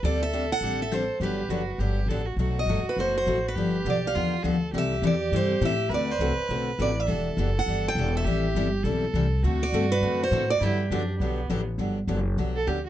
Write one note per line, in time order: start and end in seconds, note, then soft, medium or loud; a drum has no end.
0.03 0.50 D2 medium
0.03 0.23 D3 medium
0.03 0.23 G3 medium
0.03 0.24 C4 medium
0.03 0.23 D4 medium
0.03 0.24 G4 medium
0.03 1.21 A4 loud
0.03 0.20 D5 medium
0.23 0.49 E5 loud
0.33 0.44 D3 medium
0.33 0.44 G3 medium
0.33 0.44 C4 medium
0.33 0.44 D4 loud
0.33 0.44 G4 medium
0.52 0.82 F#5 loud
0.61 1.08 A1 medium
0.61 0.82 D3 medium
0.61 0.82 G3 medium
0.61 0.82 C4 medium
0.61 0.82 D4 medium
0.61 0.82 G4 medium
0.82 0.92 E5 medium
0.92 1.02 D3 medium
0.92 1.02 G3 medium
0.92 1.03 C4 medium
0.92 1.03 D4 medium
0.92 1.03 G4 medium
0.92 1.20 C5 medium
1.20 1.44 G1 medium
1.20 1.40 D3 medium
1.20 1.40 F#3 medium
1.20 1.41 B3 medium
1.20 1.41 D4 medium
1.20 1.51 G4 medium
1.20 1.41 G4 medium
1.20 2.06 B4 medium
1.49 1.75 F#1 medium
1.49 1.61 D3 medium
1.49 1.61 F#3 medium
1.49 1.61 B3 medium
1.49 1.61 D4 medium
1.49 1.80 F#4 medium
1.49 1.61 G4 medium
1.78 2.04 G1 medium
1.78 1.99 D3 medium
1.78 2.00 F#3 medium
1.78 2.00 B3 medium
1.78 1.99 D4 medium
1.78 2.10 G4 medium
1.78 2.00 G4 medium
2.06 2.33 A1 medium
2.06 2.21 D3 medium
2.06 2.27 A4 medium
2.10 2.21 F#3 medium
2.10 2.21 B3 medium
2.10 2.21 D4 medium
2.10 2.21 G4 medium
2.25 2.38 F#4 medium
2.36 2.65 B1 medium
2.36 2.58 B2 medium
2.36 2.58 F#3 medium
2.36 2.58 A3 medium
2.36 2.58 D#4 medium
2.36 3.56 F#4 medium
2.36 2.59 F#4 medium
2.59 2.85 D#5 medium
2.66 2.83 G1 medium
2.66 2.79 B2 medium
2.66 2.79 F#3 medium
2.66 2.79 A3 medium
2.66 2.79 D#4 medium
2.70 2.80 F#4 medium
2.84 muted upright bass stroke soft
2.89 2.99 B4 medium
2.97 3.26 F#1 medium
2.97 3.17 B2 medium
2.97 3.17 F#3 medium
2.97 3.17 A3 medium
2.97 3.18 D#4 medium
2.97 3.18 F#4 medium
2.97 3.15 C5 medium
3.18 3.46 C5 medium
3.26 3.55 A1 medium
3.26 3.38 B2 medium
3.26 3.38 F#3 medium
3.26 3.38 A3 medium
3.26 3.38 D#4 medium
3.26 3.38 F#4 medium
3.48 3.85 B4 medium
3.55 3.84 G1 medium
3.55 3.76 D3 medium
3.55 3.76 F3 medium
3.55 3.76 B3 medium
3.55 3.76 D4 medium
3.55 4.16 G4 loud
3.55 3.76 G4 medium
3.85 4.14 B1 medium
3.85 3.96 D3 medium
3.85 3.96 F3 medium
3.85 3.97 B3 medium
3.85 3.97 D4 medium
3.85 3.97 G4 loud
3.90 4.06 D5 medium
4.07 4.60 F5 medium
4.14 4.43 E2 medium
4.14 4.34 D3 medium
4.14 4.34 F3 medium
4.14 4.35 B3 medium
4.14 4.35 D4 medium
4.14 4.44 F4 medium
4.14 4.35 G4 medium
4.43 4.73 D2 medium
4.43 4.55 D3 medium
4.43 4.55 F3 medium
4.43 4.55 B3 medium
4.43 4.55 D4 medium
4.43 4.56 G4 medium
4.43 4.72 A4 medium
4.73 5.01 C2 medium
4.73 4.93 C3 medium
4.73 4.93 E3 medium
4.73 4.93 G3 medium
4.73 4.93 C4 medium
4.73 4.94 E4 medium
4.73 5.91 G4 loud
4.73 4.94 A4 medium
4.78 5.06 E5 medium
5.02 5.31 E2 medium
5.02 5.14 C3 medium
5.02 5.14 E3 medium
5.02 5.14 G3 medium
5.02 5.14 C4 medium
5.02 5.14 E4 medium
5.02 5.14 A4 loud
5.07 5.35 D5 medium
5.32 5.61 G2 medium
5.32 5.52 C3 medium
5.32 5.52 E3 medium
5.32 5.52 G3 medium
5.32 5.52 C4 medium
5.32 5.52 E4 medium
5.32 5.52 A4 medium
5.36 5.62 C5 medium
5.61 5.89 A2 medium
5.61 5.72 C3 medium
5.61 5.72 E3 medium
5.61 5.73 G3 medium
5.61 5.73 C4 loud
5.61 5.73 E4 medium
5.61 5.73 A4 medium
5.65 5.94 E5 medium
5.89 6.18 D2 medium
5.89 6.11 D3 medium
5.89 6.11 A3 medium
5.89 6.10 C4 medium
5.89 6.11 F#4 medium
5.89 6.11 A4 medium
5.89 6.96 B4 loud
5.94 6.11 D5 medium
6.11 6.69 C5 medium
6.19 6.36 C2 medium
6.19 6.31 D3 medium
6.19 6.31 A3 medium
6.19 6.31 C4 medium
6.19 6.31 F#4 loud
6.19 6.32 A4 medium
6.37 muted upright bass stroke soft
6.49 6.78 B1 medium
6.49 6.69 D3 medium
6.49 6.69 A3 medium
6.49 6.70 C4 medium
6.49 6.70 F#4 medium
6.49 6.70 A4 medium
6.79 7.07 A1 medium
6.79 6.90 D3 medium
6.79 6.90 A3 medium
6.79 6.90 C4 medium
6.79 6.90 F#4 medium
6.79 6.90 A4 medium
6.79 7.00 D5 medium
7.00 7.39 E5 medium
7.06 7.36 E1 medium
7.06 7.28 E3 medium
7.06 7.28 B3 medium
7.06 7.28 D4 medium
7.06 7.28 G4 medium
7.06 8.26 A4 loud
7.37 7.66 F#1 medium
7.37 7.49 E3 medium
7.37 7.49 B3 medium
7.37 7.49 D4 medium
7.37 7.49 G4 loud
7.59 7.87 F#5 loud
7.66 7.95 G1 medium
7.66 7.87 E3 medium
7.66 7.87 B3 medium
7.66 7.87 D4 medium
7.66 7.87 G4 medium
7.88 8.14 G5 loud
7.95 8.24 E1 medium
7.95 8.08 E3 medium
7.95 8.08 B3 medium
7.95 8.09 D4 medium
7.95 8.08 G4 medium
8.17 8.70 E5 medium
8.25 8.54 A1 medium
8.25 8.45 E3 medium
8.25 8.46 G3 medium
8.25 8.46 C4 medium
8.25 8.46 E4 medium
8.25 8.85 G4 loud
8.25 8.46 A4 medium
8.55 8.83 G1 medium
8.55 8.66 E3 medium
8.55 8.66 G3 medium
8.55 8.67 C4 loud
8.55 8.67 E4 medium
8.55 8.67 A4 loud
8.83 9.13 B1 medium
8.83 9.04 E3 medium
8.83 9.04 G3 medium
8.83 9.04 C4 medium
8.83 9.04 E4 medium
8.83 9.44 A4 loud
8.83 9.05 A4 medium
9.14 9.42 C2 medium
9.14 9.25 E3 medium
9.14 9.25 G3 medium
9.14 9.26 C4 medium
9.14 9.25 E4 medium
9.14 9.26 A4 medium
9.42 9.72 D2 medium
9.42 9.63 D3 medium
9.42 9.63 A3 medium
9.42 9.63 C4 medium
9.42 10.60 F#4 loud
9.42 9.64 F#4 medium
9.42 9.63 A4 medium
9.63 9.89 D5 loud
9.72 10.01 G2 medium
9.72 9.84 D3 medium
9.72 9.84 A3 loud
9.72 9.84 C4 loud
9.72 9.84 F#4 loud
9.72 9.84 A4 loud
9.92 10.23 B4 loud
10.01 10.30 F#2 medium
10.01 10.22 D3 medium
10.01 10.22 A3 medium
10.01 10.22 C4 medium
10.01 10.22 F#4 medium
10.01 10.22 A4 medium
10.23 10.48 C5 medium
10.31 10.60 A2 medium
10.31 10.42 D3 medium
10.31 10.43 A3 medium
10.31 10.43 C4 loud
10.31 10.43 F#4 medium
10.31 10.43 A4 medium
10.50 10.62 D5 loud
10.61 10.89 G2 medium
10.61 10.80 D3 medium
10.61 10.81 F#3 medium
10.61 10.81 B3 medium
10.61 10.81 D4 medium
10.61 10.88 E4 medium
10.61 10.81 G4 medium
10.61 11.46 G4 medium
10.90 11.19 F#2 medium
10.90 11.01 D3 medium
10.90 11.02 F#3 loud
10.90 11.02 B3 loud
10.90 11.17 D4 medium
10.90 11.02 D4 loud
10.90 11.02 G4 loud
11.18 11.48 B1 medium
11.18 11.40 D3 medium
11.18 11.40 F#3 medium
11.18 11.63 B3 medium
11.18 11.40 B3 medium
11.18 11.40 D4 medium
11.18 11.40 G4 medium
11.50 11.78 A1 medium
11.50 11.60 D3 medium
11.50 11.60 F#3 medium
11.50 11.60 B3 loud
11.50 11.60 D4 medium
11.50 11.60 G4 loud
11.78 12.07 G1 medium
11.78 11.98 D3 medium
11.78 11.98 F#3 medium
11.78 11.98 B3 medium
11.78 11.98 D4 medium
11.78 11.99 G4 medium
12.07 12.36 F#1 medium
12.07 12.19 D3 medium
12.07 12.19 F#3 medium
12.07 12.19 B3 medium
12.07 12.19 D4 medium
12.07 12.19 G4 medium
12.37 12.66 B1 medium
12.37 12.57 D3 medium
12.37 12.57 F#3 medium
12.37 12.57 B3 medium
12.37 12.57 D4 medium
12.37 12.57 G4 medium
12.56 12.69 A4 medium
12.67 12.89 D2 medium
12.67 12.78 D3 medium
12.67 12.78 F#3 medium
12.67 12.78 B3 medium
12.67 12.78 D4 medium
12.67 12.84 G4 medium
12.67 12.78 G4 medium
12.86 12.89 F#4 medium